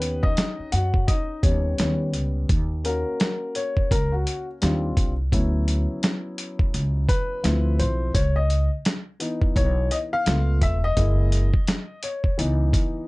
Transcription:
Already playing: upright bass D#2, upright piano B3 C#4 G4 B4
0.02 closed hi-hat
0.23 upright piano D#4 D#5, kick
0.37 snare, closed hi-hat
0.59 muted upright bass stroke
0.72 upright bass F#2, upright piano F#4 F#5, closed hi-hat
0.94 kick
1.08 upright piano D#4 D#5, kick, closed hi-hat
1.43 upright bass D#2, upright piano G3 B3 C#4 C#5, kick, closed hi-hat
1.78 upright bass D#2, upright piano G3 B3 C#4, snare, closed hi-hat
2.14 upright bass C#2, closed hi-hat
2.49 upright bass D#2, kick, closed hi-hat
2.84 upright piano A#3 C#4 F#4 A#4, closed hi-hat
3.20 snare, closed hi-hat
3.55 upright piano C#5, closed hi-hat
3.77 kick
3.91 upright bass C#2, upright piano A#4, kick, closed hi-hat
4.12 upright piano F#4
4.27 closed hi-hat
4.61 upright bass D#2, upright piano G3 C4 D4 F4, snare, closed hi-hat
4.97 upright bass C2, kick, closed hi-hat
5.32 upright bass D2, upright piano F#3 B3 C#4 E4, kick, closed hi-hat
5.68 closed hi-hat
6.03 snare, closed hi-hat
6.38 closed hi-hat
6.59 kick
6.74 upright bass C#2, closed hi-hat
7.09 upright piano B4, kick, closed hi-hat
7.43 upright bass D2, upright piano F3 C4 E4, snare, closed hi-hat
7.79 upright bass B1, upright piano C5, closed hi-hat
8.15 upright bass C#2, upright piano C#5, kick, closed hi-hat
8.36 upright piano D#5
8.50 closed hi-hat
8.85 snare, closed hi-hat
9.20 upright piano E3 B3 D#4, closed hi-hat
9.42 kick
9.56 upright bass B1, upright piano C#5, kick, closed hi-hat
9.91 upright piano D#5, closed hi-hat
10.13 upright piano F5
10.26 upright bass C#2, upright piano A3 B3 F4, snare, closed hi-hat
10.62 upright bass E1, upright piano E5, kick, closed hi-hat
10.84 upright piano D#5
10.97 upright bass F#1, upright piano G#3 A#3 E4, kick, closed hi-hat
11.32 closed hi-hat
11.54 kick
11.67 snare, closed hi-hat
12.03 upright piano C#5, closed hi-hat
12.24 kick
12.38 upright bass C#2, upright piano E3 B3 D#4, closed hi-hat
12.73 kick, closed hi-hat

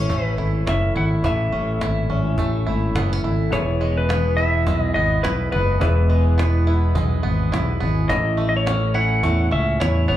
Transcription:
Already playing: steel-string acoustic guitar E3 A3 C#4, five-string banjo E3 E4, upright piano C#4 A4 E5, electric slide guitar C#5
0.09 fingered electric bass A1, steel-string acoustic guitar A2, five-string banjo A3, cajon bass
0.24 electric slide guitar B4
0.37 fingered electric bass G#1, steel-string acoustic guitar A3, five-string banjo E4
0.66 fingered electric bass F#1, steel-string acoustic guitar E3, five-string banjo C#4, electric slide guitar E5, cajon slap
0.96 fingered electric bass G#1, five-string banjo E4, electric slide guitar F#5
1.22 fingered electric bass A1, steel-string acoustic guitar A2, five-string banjo E3 E4, upright piano C#4 A4 E5, electric slide guitar E5, cajon bass
1.52 fingered electric bass A1, steel-string acoustic guitar A3, five-string banjo C#4
1.81 fingered electric bass G#1, steel-string acoustic guitar E3, five-string banjo E4, cajon slap
2.10 fingered electric bass G#1, steel-string acoustic guitar C#4, five-string banjo C#4
2.38 fingered electric bass A1, steel-string acoustic guitar A2, five-string banjo A3, cajon bass
2.67 fingered electric bass G#1, steel-string acoustic guitar A3, five-string banjo E4
2.95 fingered electric bass F#1, steel-string acoustic guitar E3, five-string banjo B3, cajon slap
3.13 five-string banjo C#4
3.23 fingered electric bass G#1, five-string banjo E4
3.51 fingered electric bass E1, steel-string acoustic guitar E2, five-string banjo E3, upright piano B3 E4 G#4 E5, electric slide guitar C#5, cajon bass
3.81 five-string banjo G#3, steel-string acoustic guitar G#3
3.97 electric slide guitar B4
4.09 steel-string acoustic guitar E3, five-string banjo B3, cajon slap
4.37 steel-string acoustic guitar B3, five-string banjo E4, electric slide guitar E5
4.67 fingered electric bass B1, steel-string acoustic guitar E2, five-string banjo G#3, cajon bass
4.80 electric slide guitar D#5
4.94 fingered electric bass G#1, five-string banjo B3, electric slide guitar D#5
5.23 fingered electric bass B1, steel-string acoustic guitar E3, five-string banjo E4, electric slide guitar B4, cajon slap
5.52 fingered electric bass F#1, steel-string acoustic guitar G#3, five-string banjo B3, electric slide guitar B4
5.80 fingered electric bass E1, steel-string acoustic guitar E2, five-string banjo E3, upright piano B3 E4 G#4 E5, electric slide guitar B4, cajon bass
6.10 five-string banjo G#3, steel-string acoustic guitar G#3
6.38 steel-string acoustic guitar E3, five-string banjo B3, cajon slap
6.67 steel-string acoustic guitar B3, five-string banjo E4
6.95 fingered electric bass B1, steel-string acoustic guitar E2, five-string banjo G#3, cajon bass
7.23 fingered electric bass G#1, five-string banjo B3
7.52 fingered electric bass B1, steel-string acoustic guitar E3, five-string banjo E4, cajon slap
7.80 fingered electric bass G#1, steel-string acoustic guitar G#3, five-string banjo B3
8.08 fingered electric bass A1, steel-string acoustic guitar A2, five-string banjo E3, upright piano C#4 E4 A4 C#5, electric slide guitar D#5, cajon bass
8.37 five-string banjo A3, steel-string acoustic guitar A3
8.49 electric slide guitar D#5
8.57 electric slide guitar C#5
8.66 steel-string acoustic guitar E3, five-string banjo C#4, cajon slap
8.94 steel-string acoustic guitar C#4, five-string banjo E4, electric slide guitar F#5
9.23 fingered electric bass E2, steel-string acoustic guitar A2, five-string banjo A3, cajon bass
9.51 fingered electric bass C#2, five-string banjo C#4, electric slide guitar E5
9.80 fingered electric bass E2, steel-string acoustic guitar E3, five-string banjo E4, electric slide guitar C#5, cajon slap
10.08 fingered electric bass G#1, steel-string acoustic guitar A3, five-string banjo B3, electric slide guitar C#5

